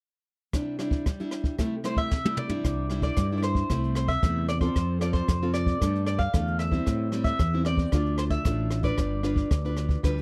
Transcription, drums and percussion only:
0.53 kick, cross-stick, closed hi-hat
0.79 cross-stick, closed hi-hat
0.91 kick
1.06 kick, cross-stick, closed hi-hat
1.20 closed hi-hat
1.31 cross-stick, closed hi-hat
1.44 kick
1.59 kick, cross-stick, closed hi-hat
1.84 cross-stick, closed hi-hat
1.97 kick
2.11 kick, snare
2.26 high tom
2.37 mid tom
2.49 floor tom
2.64 kick, cross-stick, closed hi-hat
2.90 cross-stick, closed hi-hat
3.02 kick, closed hi-hat
3.17 kick, cross-stick, closed hi-hat
3.43 cross-stick, closed hi-hat
3.55 kick
3.70 kick, cross-stick, closed hi-hat
3.84 closed hi-hat
3.95 cross-stick, closed hi-hat
4.08 kick
4.23 kick, cross-stick, closed hi-hat
4.49 cross-stick, closed hi-hat
4.61 kick, closed hi-hat
4.76 kick, cross-stick, closed hi-hat
5.01 cross-stick, closed hi-hat
5.14 kick
5.28 kick, cross-stick, closed hi-hat
5.42 closed hi-hat
5.54 cross-stick, closed hi-hat
5.66 kick
5.81 kick, cross-stick, closed hi-hat
5.95 closed hi-hat
6.07 cross-stick, closed hi-hat
6.19 kick, closed hi-hat
6.34 kick, cross-stick, closed hi-hat
6.47 closed hi-hat
6.59 cross-stick, closed hi-hat
6.72 kick
6.86 kick, cross-stick, closed hi-hat
7.12 cross-stick, closed hi-hat
7.24 kick, closed hi-hat
7.39 kick, cross-stick, closed hi-hat
7.65 cross-stick, closed hi-hat
7.77 kick
7.92 kick, cross-stick, closed hi-hat
8.06 closed hi-hat
8.18 cross-stick, closed hi-hat
8.30 kick
8.45 kick, cross-stick, closed hi-hat
8.71 cross-stick, closed hi-hat
8.83 kick, closed hi-hat
8.98 kick, cross-stick, closed hi-hat
9.23 cross-stick, closed hi-hat
9.36 kick
9.51 kick, cross-stick, closed hi-hat
9.65 closed hi-hat
9.77 cross-stick, closed hi-hat
9.89 kick
10.04 kick, cross-stick, closed hi-hat
10.18 closed hi-hat

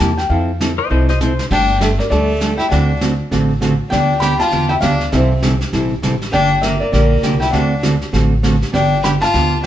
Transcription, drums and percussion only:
0.18 snare
0.30 brush sweep
0.61 snare, hi-hat pedal
1.09 snare
1.21 hi-hat pedal, mid tom
1.39 snare
1.51 brush sweep, kick, snare, crash
1.81 snare, hi-hat pedal
2.00 snare
2.11 brush sweep, snare
2.41 snare, hi-hat pedal
2.59 snare
2.71 brush sweep, snare
3.01 snare, hi-hat pedal
3.32 brush sweep, snare
3.62 snare, hi-hat pedal
3.92 brush sweep, snare
4.22 snare, hi-hat pedal
4.40 snare
4.52 brush sweep, snare
4.82 snare, hi-hat pedal
5.00 snare
5.12 brush sweep, snare
5.43 snare, hi-hat pedal
5.61 snare
5.73 brush sweep, snare
6.03 snare, hi-hat pedal
6.21 snare
6.33 brush sweep, snare
6.63 snare, hi-hat pedal
6.93 brush sweep, snare
7.23 snare, hi-hat pedal
7.42 snare
7.53 brush sweep, snare
7.83 snare, hi-hat pedal
8.01 snare
8.14 brush sweep, snare
8.44 snare, hi-hat pedal
8.62 snare
8.74 brush sweep, snare
9.04 snare, hi-hat pedal
9.22 snare
9.34 brush sweep, snare

